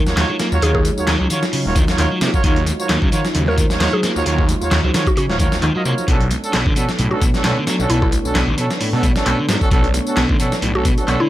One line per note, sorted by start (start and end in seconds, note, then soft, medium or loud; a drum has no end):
0.00 6.04 F#3 medium
0.00 6.04 D#4 medium
0.00 6.04 F4 medium
0.00 2.41 C#5 medium
0.06 0.15 D#2 soft
0.06 0.16 F4 medium
0.06 0.16 F#4 medium
0.06 0.16 A#4 medium
0.06 0.16 C#5 medium
0.06 snare soft
0.06 tambourine soft
0.17 0.25 D#2 medium
0.17 0.28 D#3 medium
0.17 0.28 F4 loud
0.17 0.28 F#4 loud
0.17 0.28 A#4 medium
0.17 0.28 C#5 loud
0.17 snare loud
0.17 clap loud
0.17 closed hi-hat medium
0.17 tambourine soft
0.17 high conga loud
0.29 0.36 F#3 medium
0.29 high bongo medium
0.39 0.48 A#3 medium
0.39 snare medium
0.39 closed hi-hat medium
0.39 tambourine medium
0.52 0.59 D#2 loud
0.52 0.61 F4 loud
0.52 0.61 F#4 medium
0.52 0.61 A#4 medium
0.52 0.61 C#5 loud
0.52 tambourine soft
0.62 0.90 D#2 loud
0.62 0.71 D#3 medium
0.62 0.80 F4 medium
0.62 0.80 F#4 medium
0.62 0.70 G#4 medium
0.62 0.80 A#4 medium
0.62 0.80 C#5 loud
0.62 closed hi-hat medium
0.62 tambourine soft
0.62 high bongo medium
0.75 0.81 G#4 medium
0.75 kick loud
0.85 closed hi-hat medium
0.85 tambourine medium
0.85 high conga medium
0.97 1.06 D#2 soft
0.97 1.14 F4 medium
0.97 1.13 F#4 medium
0.97 1.14 A#4 medium
0.97 1.14 C#5 loud
0.97 tambourine soft
1.07 1.16 D#2 medium
1.07 1.20 D#3 loud
1.07 snare loud
1.07 clap loud
1.07 closed hi-hat medium
1.07 tambourine soft
1.07 high bongo medium
1.20 1.27 C#2 medium
1.20 1.27 F#3 medium
1.30 1.38 D#3 medium
1.30 1.42 F4 medium
1.30 1.42 F#4 medium
1.30 1.42 A#4 medium
1.30 1.42 C#5 loud
1.30 closed hi-hat medium
1.30 tambourine medium
1.30 low conga medium
1.42 snare soft
1.42 tambourine soft
1.42 high bongo medium
1.53 1.61 C#3 medium
1.53 open hi-hat medium
1.53 tambourine soft
1.65 1.77 D#1 loud
1.65 1.75 F4 loud
1.65 1.75 F#4 medium
1.65 1.75 A#4 medium
1.65 1.75 C#5 loud
1.65 high conga loud
1.76 1.84 D#2 medium
1.76 1.84 D#3 medium
1.76 kick medium
1.76 closed hi-hat medium
1.76 tambourine medium
1.88 1.97 D#2 soft
1.88 1.97 F4 medium
1.88 1.97 F#4 medium
1.88 1.97 A#4 medium
1.88 1.97 C#5 medium
1.88 snare medium
1.88 tambourine soft
1.88 high bongo medium
1.98 2.07 D#2 medium
1.98 2.10 D#3 medium
1.98 2.10 F4 loud
1.98 2.10 F#4 medium
1.98 2.10 A#4 loud
1.98 2.10 C#5 loud
1.98 clap loud
1.98 closed hi-hat medium
1.98 tambourine soft
1.98 high conga medium
2.11 2.18 F#3 medium
2.21 2.29 C3 loud
2.21 2.29 A#3 medium
2.21 snare loud
2.21 closed hi-hat medium
2.21 tambourine medium
2.21 high bongo medium
2.33 2.43 F4 loud
2.33 2.43 F#4 medium
2.33 2.43 A#4 medium
2.33 2.43 C#5 loud
2.33 kick loud
2.33 tambourine soft
2.33 low conga medium
2.44 2.72 D#2 loud
2.44 2.52 D#3 medium
2.44 2.61 F4 loud
2.44 2.61 F#4 medium
2.44 2.61 A#4 medium
2.44 6.04 C5 medium
2.44 2.61 C#5 loud
2.44 kick loud
2.44 closed hi-hat medium
2.44 tambourine soft
2.56 closed hi-hat soft
2.66 closed hi-hat medium
2.66 tambourine medium
2.66 high bongo medium
2.66 high conga loud
2.79 2.95 F4 medium
2.79 2.95 F#4 medium
2.79 2.95 A#4 medium
2.79 2.95 C#5 loud
2.79 tambourine soft
2.89 2.98 D#2 medium
2.89 3.02 D#3 loud
2.89 snare loud
2.89 clap loud
2.89 closed hi-hat medium
2.89 tambourine soft
3.02 3.09 C#2 medium
3.02 3.09 F#3 medium
3.02 kick loud
3.02 high bongo medium
3.12 3.20 D#3 medium
3.12 3.24 F4 medium
3.12 3.24 F#4 medium
3.12 3.24 A#4 medium
3.12 3.24 C#5 loud
3.12 closed hi-hat medium
3.12 tambourine medium
3.12 low conga medium
3.25 snare soft
3.25 tambourine soft
3.35 3.63 D#2 medium
3.35 3.43 C#3 medium
3.35 closed hi-hat medium
3.35 tambourine soft
3.46 3.57 F4 medium
3.46 3.57 F#4 medium
3.46 3.57 A#4 medium
3.46 3.60 A#4 medium
3.46 3.57 C#5 loud
3.46 high bongo medium
3.46 high conga loud
3.58 3.66 D#3 medium
3.58 kick medium
3.58 closed hi-hat medium
3.58 tambourine medium
3.70 3.79 D#2 soft
3.70 3.79 F4 medium
3.70 3.79 F#4 medium
3.70 3.79 A#4 medium
3.70 3.79 C#5 medium
3.70 snare soft
3.70 tambourine soft
3.80 3.88 D#2 medium
3.80 3.92 D#3 medium
3.80 3.92 F4 loud
3.80 3.92 F#4 medium
3.80 3.92 A#4 loud
3.80 3.92 C#5 loud
3.80 snare loud
3.80 clap loud
3.80 closed hi-hat medium
3.80 tambourine soft
3.80 high bongo medium
3.80 high conga medium
3.93 4.00 F#3 medium
3.93 4.06 G#4 medium
4.03 4.11 A#3 medium
4.03 snare medium
4.03 closed hi-hat medium
4.03 tambourine medium
4.15 4.22 D#2 loud
4.15 4.24 F4 loud
4.15 4.24 F#4 medium
4.15 4.24 A#4 medium
4.15 4.24 C#5 loud
4.15 tambourine soft
4.26 4.54 D#2 loud
4.26 4.34 D#3 medium
4.26 4.43 F4 loud
4.26 4.43 F#4 medium
4.26 4.43 A#4 medium
4.26 4.43 C#5 loud
4.26 closed hi-hat medium
4.26 tambourine soft
4.26 high bongo medium
4.38 kick loud
4.48 closed hi-hat medium
4.48 tambourine medium
4.48 high conga loud
4.61 4.70 D#2 soft
4.61 4.77 F4 medium
4.61 4.77 F#4 medium
4.61 4.77 A#4 medium
4.61 4.77 C#5 loud
4.61 tambourine soft
4.61 high bongo medium
4.71 4.79 D#2 medium
4.71 4.83 D#3 loud
4.71 snare loud
4.71 clap loud
4.71 closed hi-hat medium
4.71 tambourine soft
4.84 4.90 C#2 medium
4.84 4.91 F#3 medium
4.94 5.02 D#3 medium
4.94 5.06 F4 medium
4.94 5.06 F#4 medium
4.94 5.06 A#4 medium
4.94 5.06 C#5 loud
4.94 snare loud
4.94 closed hi-hat medium
4.94 tambourine medium
4.94 low conga medium
5.07 5.14 F#4 medium
5.07 kick medium
5.07 tambourine soft
5.07 high bongo medium
5.17 5.25 C#3 medium
5.17 5.25 F#4 medium
5.17 closed hi-hat medium
5.17 tambourine soft
5.29 5.41 D#1 loud
5.29 5.38 F4 loud
5.29 5.38 F#4 medium
5.29 5.38 A#4 medium
5.29 5.38 C#5 loud
5.29 snare soft
5.29 high conga loud
5.40 5.48 D#2 medium
5.40 5.48 D#3 medium
5.40 5.57 F4 loud
5.40 5.57 F#4 medium
5.40 5.57 A#4 medium
5.40 5.57 C#5 loud
5.40 kick medium
5.40 closed hi-hat medium
5.40 tambourine medium
5.40 high bongo soft
5.52 5.60 D#2 soft
5.52 snare medium
5.52 tambourine soft
5.62 5.70 D#2 medium
5.62 5.74 D#3 medium
5.62 clap loud
5.62 closed hi-hat medium
5.62 tambourine soft
5.62 high conga medium
5.75 5.82 F#3 medium
5.75 5.84 F4 medium
5.75 5.84 F#4 medium
5.75 5.84 A#4 medium
5.75 5.84 D#5 loud
5.85 5.93 C3 medium
5.85 5.93 A#3 medium
5.85 6.05 F4 medium
5.85 6.05 F#4 medium
5.85 6.05 A#4 medium
5.85 6.05 C#5 medium
5.85 tambourine medium
5.85 high bongo medium
5.98 tambourine soft
5.98 low conga medium
6.07 6.36 B1 loud
6.07 6.16 B2 medium
6.07 11.29 B3 medium
6.07 6.25 C#4 loud
6.07 11.29 D4 medium
6.07 6.25 D4 medium
6.07 6.25 F#4 medium
6.07 6.25 A4 loud
6.07 11.29 A4 medium
6.07 11.29 C#5 medium
6.07 kick loud
6.07 closed hi-hat medium
6.07 tambourine soft
6.21 closed hi-hat soft
6.31 closed hi-hat medium
6.31 tambourine medium
6.31 high bongo soft
6.31 high conga medium
6.43 6.59 C#4 medium
6.43 6.59 D4 medium
6.43 6.59 F#4 medium
6.43 6.59 A4 loud
6.43 tambourine soft
6.53 6.61 B1 medium
6.53 6.65 B2 loud
6.53 snare loud
6.53 clap loud
6.53 closed hi-hat medium
6.53 tambourine soft
6.66 6.72 A1 medium
6.66 6.72 D3 medium
6.66 kick loud
6.75 6.84 B2 medium
6.75 6.88 C#4 medium
6.75 6.88 D4 medium
6.75 6.88 F#4 medium
6.75 6.88 A4 loud
6.75 closed hi-hat medium
6.75 tambourine medium
6.75 high bongo medium
6.75 low conga medium
6.89 snare soft
6.89 tambourine soft
6.99 7.27 B1 medium
6.99 7.07 A2 medium
6.99 closed hi-hat medium
6.99 tambourine soft
7.11 7.21 C#4 loud
7.11 7.21 D4 medium
7.11 7.24 F#4 loud
7.11 7.21 F#4 medium
7.11 7.21 A4 loud
7.11 high bongo soft
7.11 high conga medium
7.21 7.30 B2 medium
7.21 kick loud
7.21 closed hi-hat medium
7.21 tambourine medium
7.34 7.42 B1 soft
7.34 7.43 C#4 medium
7.34 7.43 D4 medium
7.34 7.43 F#4 medium
7.34 7.43 A4 medium
7.34 snare soft
7.34 tambourine soft
7.44 7.52 B1 medium
7.44 7.56 B2 medium
7.44 7.56 C#4 loud
7.44 7.56 D4 medium
7.44 7.56 F#4 medium
7.44 7.56 A4 loud
7.44 snare loud
7.44 clap loud
7.44 closed hi-hat medium
7.44 tambourine soft
7.44 high conga medium
7.57 7.63 D3 medium
7.57 high bongo medium
7.67 7.75 F#3 medium
7.67 snare medium
7.67 closed hi-hat medium
7.67 tambourine medium
7.79 7.86 B1 loud
7.79 7.88 C#4 loud
7.79 7.88 D4 medium
7.79 7.88 F#4 medium
7.79 7.88 A4 loud
7.79 tambourine soft
7.90 8.18 B1 loud
7.90 7.98 B2 medium
7.90 8.07 C#4 loud
7.90 8.07 D4 medium
7.90 7.98 E4 loud
7.90 8.07 F#4 medium
7.90 8.07 A4 loud
7.90 closed hi-hat medium
7.90 tambourine soft
7.90 high bongo soft
8.02 8.09 E4 medium
8.02 kick loud
8.12 closed hi-hat medium
8.12 tambourine medium
8.12 high conga medium
8.25 8.33 B1 soft
8.25 8.41 C#4 medium
8.25 8.41 D4 medium
8.25 8.41 F#4 medium
8.25 8.41 A4 loud
8.25 tambourine soft
8.35 8.43 B1 medium
8.35 8.47 B2 loud
8.35 snare loud
8.35 clap loud
8.35 closed hi-hat medium
8.35 tambourine soft
8.35 high bongo medium
8.48 8.54 A1 medium
8.48 8.54 D3 medium
8.58 8.66 B2 medium
8.58 8.69 C#4 medium
8.58 8.69 D4 medium
8.58 8.69 F#4 medium
8.58 8.69 A4 medium
8.58 closed hi-hat medium
8.58 tambourine medium
8.58 low conga medium
8.70 snare soft
8.70 tambourine soft
8.70 high bongo medium
8.81 8.89 A2 medium
8.81 open hi-hat medium
8.81 tambourine soft
8.93 9.05 B2 loud
8.93 9.02 C#4 medium
8.93 9.02 D4 medium
8.93 9.02 F#4 medium
8.93 9.02 A4 loud
8.93 high conga medium
9.03 9.11 B1 medium
9.03 9.11 B2 medium
9.03 kick loud
9.03 closed hi-hat medium
9.03 tambourine medium
9.16 9.24 B1 soft
9.16 9.25 C#4 medium
9.16 9.25 D4 medium
9.16 9.25 F#4 medium
9.16 9.25 A4 medium
9.16 snare medium
9.16 tambourine soft
9.16 high bongo medium
9.26 9.34 B1 medium
9.26 9.38 B2 medium
9.26 9.37 C#4 loud
9.26 9.37 D4 loud
9.26 9.37 F#4 medium
9.26 9.37 A4 loud
9.26 clap loud
9.26 closed hi-hat medium
9.26 tambourine soft
9.26 high conga medium
9.39 9.45 D3 medium
9.48 9.57 G#2 medium
9.48 9.57 F#3 medium
9.48 snare loud
9.48 closed hi-hat medium
9.48 tambourine medium
9.48 high bongo medium
9.61 9.70 C#4 loud
9.61 9.70 D4 medium
9.61 9.70 F#4 medium
9.61 9.70 A4 loud
9.61 kick loud
9.61 tambourine soft
9.61 low conga medium
9.71 9.99 B1 loud
9.71 9.80 B2 medium
9.71 9.89 C#4 loud
9.71 9.89 D4 medium
9.71 9.89 F#4 medium
9.71 9.89 A4 loud
9.71 kick loud
9.71 closed hi-hat medium
9.71 tambourine soft
9.84 closed hi-hat soft
9.94 closed hi-hat medium
9.94 tambourine medium
9.94 high bongo medium
9.94 high conga medium
10.07 10.23 C#4 medium
10.07 10.23 D4 medium
10.07 10.23 F#4 medium
10.07 10.23 A4 loud
10.07 tambourine soft
10.17 10.25 B1 medium
10.17 10.29 B2 loud
10.17 snare loud
10.17 clap loud
10.17 closed hi-hat medium
10.17 tambourine soft
10.29 10.36 A1 medium
10.29 10.36 D3 medium
10.29 kick loud
10.29 high bongo medium
10.39 10.48 B2 medium
10.39 10.51 C#4 medium
10.39 10.51 D4 medium
10.39 10.51 F#4 medium
10.39 10.51 A4 loud
10.39 closed hi-hat medium
10.39 tambourine medium
10.39 low conga medium
10.52 snare soft
10.52 tambourine soft
10.62 10.90 B1 medium
10.62 10.70 A2 medium
10.62 closed hi-hat medium
10.62 tambourine soft
10.75 10.84 C#4 loud
10.75 10.84 D4 medium
10.75 10.88 F#4 medium
10.75 10.84 F#4 medium
10.75 10.84 A4 loud
10.75 high bongo medium
10.75 high conga medium
10.85 10.93 B2 medium
10.85 kick loud
10.85 closed hi-hat medium
10.85 tambourine medium
10.98 11.06 B1 soft
10.98 11.06 C#4 medium
10.98 11.06 D4 medium
10.98 11.06 F#4 medium
10.98 11.06 A4 loud
10.98 closed hi-hat soft
10.98 tambourine soft
11.08 11.16 B1 medium
11.08 11.19 B2 medium
11.08 11.19 C#4 loud
11.08 11.19 D4 loud
11.08 11.19 F#4 loud
11.08 11.19 A4 loud
11.08 clap loud
11.08 closed hi-hat medium
11.08 tambourine soft
11.08 high bongo medium
11.08 high conga medium
11.20 11.27 D3 medium
11.20 11.29 E4 loud